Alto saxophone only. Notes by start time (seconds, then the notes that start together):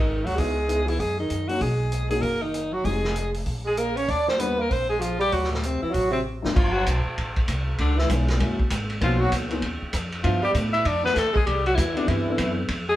Already playing: D#4
0.26 F#4
0.39 G#4
0.89 E4
1.00 G#4
1.20 D#4
1.48 F#4
1.62 G#4
2.10 G#4
2.22 A#4
2.42 D#4
2.73 F#4
2.85 G#4
3.67 G#4
3.78 A#4
3.97 C#5
4.10 D5
4.29 C5
4.40 B4
4.61 A#4
4.72 C5
4.89 G#4
5.01 F4
5.21 G4
5.33 F#4
5.52 A3
5.65 C4
5.82 E4
5.93 F#4
6.13 C4
6.56 F4
6.72 F#4
7.80 D4
7.99 E4
9.04 F4
9.21 F#4
10.23 F4
10.44 G4
10.73 E5
10.86 D5
11.05 B4
11.18 A4
11.37 G#4
11.46 G4
11.67 F#4
11.75 E4
11.97 D4
12.08 E4
12.89 G#4